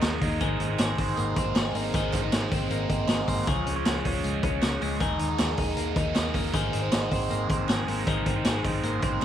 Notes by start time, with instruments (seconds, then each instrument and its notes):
Already playing: overdriven electric guitar D#3 A#3 D#4 G#4, clean electric guitar D#3 A#3 D#4
0.02 fingered electric bass D#2, clean electric guitar G#4, snare, clap, hi-hat pedal, open hi-hat
0.21 fingered electric bass D#2, overdriven electric guitar D#3 A#3 D#4 G#4, clean electric guitar A#3, kick, hi-hat pedal, open hi-hat
0.40 fingered electric bass G#1, clean electric guitar D#3 G#4, overdriven electric guitar A#3 D#4 G#4 C5, kick, hi-hat pedal, open hi-hat
0.60 fingered electric bass G#1, clean electric guitar C4, hi-hat pedal, open hi-hat
0.69 overdriven electric guitar D#4 G#4 C5
0.79 fingered electric bass G#1, clean electric guitar G#4, snare, clap, hi-hat pedal, open hi-hat
0.98 fingered electric bass G#1, overdriven electric guitar A#3 D#4 G#4 C5, clean electric guitar C4, kick, hi-hat pedal, open hi-hat
1.17 fingered electric bass G#1, clean electric guitar A#3, hi-hat pedal, open hi-hat
1.36 fingered electric bass G#1, overdriven electric guitar A#3 D#4 G#4 C5, clean electric guitar C4, kick, hi-hat pedal, open hi-hat
1.56 fingered electric bass G#1, clean electric guitar G#4, snare, clap, hi-hat pedal, open hi-hat
1.74 fingered electric bass G#1, overdriven electric guitar G#3 A#3 D#4 G#4 C5, clean electric guitar A#3, hi-hat pedal, open hi-hat
1.93 fingered electric bass G#1, clean electric guitar D#3 G#4, overdriven electric guitar A#3 D#4 G#4 C5, kick, hi-hat pedal, open hi-hat
2.13 fingered electric bass G#1, clean electric guitar C4, kick, clap, hi-hat pedal, open hi-hat
2.22 overdriven electric guitar D#4 G#4 C5
2.32 fingered electric bass G#1, clean electric guitar G#4, snare, clap, hi-hat pedal, open hi-hat
2.51 fingered electric bass G#1, overdriven electric guitar A#3 D#4 G#4 C5, clean electric guitar C4, kick, hi-hat pedal, open hi-hat
2.70 fingered electric bass G#1, clean electric guitar A#3, hi-hat pedal, open hi-hat
2.89 fingered electric bass G#1, overdriven electric guitar A#3 D#4 G#4 C5, clean electric guitar C4, kick, hi-hat pedal, open hi-hat
3.08 fingered electric bass G#1, clean electric guitar G#4, snare, clap, hi-hat pedal, open hi-hat
3.27 fingered electric bass G#1, overdriven electric guitar G#3 A#3 D#4 G#4 C5, clean electric guitar A#3, kick, hi-hat pedal, open hi-hat
3.47 fingered electric bass C#2, clean electric guitar F3 G#4, overdriven electric guitar G#3 C#4 F4 C#5, kick, hi-hat pedal, open hi-hat
3.66 fingered electric bass C#2, clean electric guitar C#4, hi-hat pedal, open hi-hat
3.76 overdriven electric guitar G#3 C#4 F4 C#5
3.85 fingered electric bass C#2, clean electric guitar G#4, snare, clap, hi-hat pedal, open hi-hat
4.04 fingered electric bass C#2, overdriven electric guitar G#3 C#4 F4 C#5, clean electric guitar C#4, kick, hi-hat pedal, open hi-hat
4.24 fingered electric bass C#2, clean electric guitar G#3, hi-hat pedal, open hi-hat
4.43 fingered electric bass C#2, overdriven electric guitar G#3 C#4 F4 C#5, clean electric guitar C#4, kick, hi-hat pedal, open hi-hat
4.62 fingered electric bass C#2, clean electric guitar G#4, snare, clap, hi-hat pedal, open hi-hat
4.81 fingered electric bass C#2, overdriven electric guitar C#3 F3 G#3 C#4 F4 C#5, clean electric guitar G#3, hi-hat pedal, open hi-hat
5.00 fingered electric bass D#2, clean electric guitar D#3 G#4, overdriven electric guitar A#3 D#4 G#4 A#4, kick, hi-hat pedal, open hi-hat
5.19 fingered electric bass D#2, clean electric guitar D#4, hi-hat pedal, open hi-hat
5.29 overdriven electric guitar D#4 G#4 A#4
5.38 fingered electric bass D#2, clean electric guitar G#4, snare, clap, hi-hat pedal, open hi-hat
5.57 fingered electric bass D#2, overdriven electric guitar A#3 D#4 G#4 A#4, clean electric guitar D#4, kick, hi-hat pedal, open hi-hat
5.77 fingered electric bass D#2, clean electric guitar A#3, hi-hat pedal, open hi-hat
5.96 fingered electric bass D#2, overdriven electric guitar A#3 D#4 G#4 A#4, clean electric guitar D#4, kick, hi-hat pedal, open hi-hat
6.15 fingered electric bass D#2, clean electric guitar G#4, snare, clap, hi-hat pedal, open hi-hat
6.34 fingered electric bass D#2, overdriven electric guitar D#3 A#3 D#4 G#4 A#4, clean electric guitar A#3, kick, hi-hat pedal, open hi-hat
6.53 fingered electric bass G#1, clean electric guitar D#3 G#4, overdriven electric guitar A#3 D#4 G#4 C5, kick, hi-hat pedal, open hi-hat
6.73 fingered electric bass G#1, clean electric guitar C4, hi-hat pedal, open hi-hat
6.82 overdriven electric guitar D#4 G#4 C5
6.92 fingered electric bass G#1, clean electric guitar G#4, snare, clap, hi-hat pedal, open hi-hat
7.10 fingered electric bass G#1, overdriven electric guitar A#3 D#4 G#4 C5, clean electric guitar C4, kick, hi-hat pedal, open hi-hat
7.30 fingered electric bass G#1, clean electric guitar A#3, hi-hat pedal, open hi-hat
7.49 fingered electric bass G#1, overdriven electric guitar A#3 D#4 G#4 C5, clean electric guitar C4, kick, hi-hat pedal, open hi-hat
7.69 fingered electric bass G#1, clean electric guitar G#4, snare, clap, hi-hat pedal, open hi-hat
7.87 fingered electric bass G#1, overdriven electric guitar G#3 A#3 D#4 G#4 C5, clean electric guitar A#3, hi-hat pedal, open hi-hat
8.06 fingered electric bass G#1, clean electric guitar D#3 G#4, overdriven electric guitar A#3 D#4 G#4 C5, kick, hi-hat pedal, open hi-hat
8.26 fingered electric bass G#1, clean electric guitar C4, kick, hi-hat pedal, open hi-hat
8.36 overdriven electric guitar D#4 G#4 C5
8.45 fingered electric bass G#1, clean electric guitar G#4, snare, clap, hi-hat pedal, open hi-hat
8.64 fingered electric bass G#1, overdriven electric guitar A#3 D#4 G#4 C5, clean electric guitar C4, kick, hi-hat pedal, open hi-hat
8.83 fingered electric bass G#1, clean electric guitar A#3, hi-hat pedal, open hi-hat
9.02 fingered electric bass G#1, overdriven electric guitar A#3 D#4 G#4 C5, clean electric guitar C4, kick, hi-hat pedal, open hi-hat